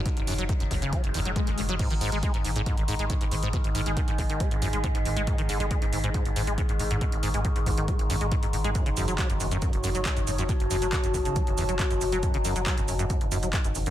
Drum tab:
CC |----------------|x---------------|----------------|----------------|
HH |xxoxxxoxxxoxxxox|xxoxxxoxxxoxxxox|xxoxxxoxxxoxxxox|xxoxxxoxxxoxxxox|
SH |----------------|----------------|----------------|----------------|
CP |----------------|----------------|----------------|----------------|
BD |o---o-o-o---o---|o---o---o---o---|o---o-o-o---o---|o---o---o---o---|

CC |----------------|----------------|----------------|----------------|
HH |xxoxxxoxxxoxxxox|xxoxxxoxxxoxxxox|xxoxxxoxxxoxxxox|xxoxxxoxxxoxxxox|
SH |----------------|x-xxxxxxx-xxxxxx|x-xxxxxxx-xxxxxx|x-xxxxxxx-xxxxxx|
CP |----------------|----x-------x---|----x-------x---|----x-------x---|
BD |o---o-o-o---o---|o---o---o---o---|o---o-o-o---o---|o---o---o---o---|